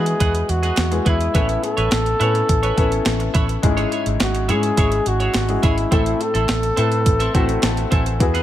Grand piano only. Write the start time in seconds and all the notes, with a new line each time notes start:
Already playing: E3 G#3 B3 E4 F#4
0.91 G#3 B3 E4 G#4
1.34 A2 B3 C#4 E4 A4
2.20 B3 C#4 E4 G#5
2.77 B3 C#4 E4 A4
3.63 G#2 G#3 C#4 E4 G#4
4.49 G#3 C#4 E4 G#4
5.48 G#3 C#4 E4 G#4
5.91 A2 A3 C4 E4 A4
6.77 A3 C4 E4 B4
7.34 A3 C4 E4 F#4 E5
7.63 A5
7.92 G#5
8.20 E3 B3 E4 F#4 G#4